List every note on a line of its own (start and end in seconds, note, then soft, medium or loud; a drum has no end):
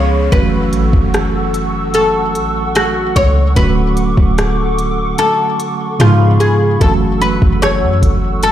0.00 0.29 C#2 loud
0.00 0.32 F3 medium
0.00 0.32 G#3 medium
0.00 0.32 B3 medium
0.00 0.32 C#4 medium
0.00 0.32 G#4 medium
0.00 0.33 G#4 medium
0.00 0.29 C#5 medium
0.00 0.32 F5 medium
0.00 0.32 B5 medium
0.00 8.52 C#6 medium
0.00 downlifter medium
0.31 0.75 F#1 loud
0.31 3.52 E3 medium
0.31 3.52 F#3 medium
0.31 3.53 A3 medium
0.31 3.53 C#4 medium
0.31 3.54 F#4 medium
0.31 3.54 A4 medium
0.31 1.94 B4 medium
0.31 5.96 F#5 medium
0.31 3.54 E6 medium
0.31 kick loud
0.31 closed hi-hat medium
0.73 0.92 A1 loud
0.73 closed hi-hat medium
0.93 2.37 F#1 loud
0.93 kick loud
1.14 cross-stick loud
1.14 closed hi-hat medium
1.54 closed hi-hat medium
1.94 2.78 A4 medium
1.94 closed hi-hat medium
2.35 3.12 A1 medium
2.35 closed hi-hat medium
2.75 3.17 F#4 medium
2.75 cross-stick loud
2.75 closed hi-hat medium
3.16 3.55 C#2 loud
3.16 3.56 C#5 medium
3.16 kick medium
3.16 closed hi-hat medium
3.55 4.15 D1 loud
3.55 5.95 D3 medium
3.55 5.95 F#3 medium
3.55 5.96 A3 medium
3.55 5.96 C#4 medium
3.55 5.97 F#4 medium
3.55 5.97 A4 medium
3.55 5.15 B4 loud
3.55 5.97 D6 medium
3.55 kick loud
3.55 closed hi-hat medium
3.97 closed hi-hat medium
4.17 5.15 D1 loud
4.17 kick loud
4.38 cross-stick loud
4.38 closed hi-hat medium
4.79 closed hi-hat medium
5.18 6.02 A4 medium
5.18 closed hi-hat medium
5.60 closed hi-hat medium
5.99 6.78 G#2 loud
5.99 6.80 C#3 medium
5.99 6.81 F3 medium
5.99 6.81 G#3 medium
5.99 6.81 B3 medium
5.99 6.38 F4 medium
5.99 6.81 F4 medium
5.99 6.80 G#4 medium
5.99 6.80 F5 medium
5.99 6.80 B5 medium
5.99 cross-stick loud
5.99 closed hi-hat medium
6.40 6.78 G#4 medium
6.40 closed hi-hat medium
6.79 7.39 F#1 loud
6.79 8.52 E3 medium
6.79 8.52 F#3 medium
6.79 8.52 A3 medium
6.79 8.52 C#4 medium
6.79 8.52 F#4 medium
6.79 6.92 A4 medium
6.79 8.52 A4 medium
6.79 8.52 F#5 medium
6.79 8.52 E6 medium
6.79 kick loud
6.79 closed hi-hat medium
7.21 7.62 B4 medium
7.21 closed hi-hat medium
7.42 7.84 F#1 loud
7.42 kick medium
7.62 8.43 C#5 medium
7.62 cross-stick loud
7.62 closed hi-hat medium
7.83 8.02 F#2 loud
8.03 8.52 F#1 loud
8.03 kick medium
8.03 closed hi-hat medium
8.43 8.52 A4 medium
8.43 closed hi-hat medium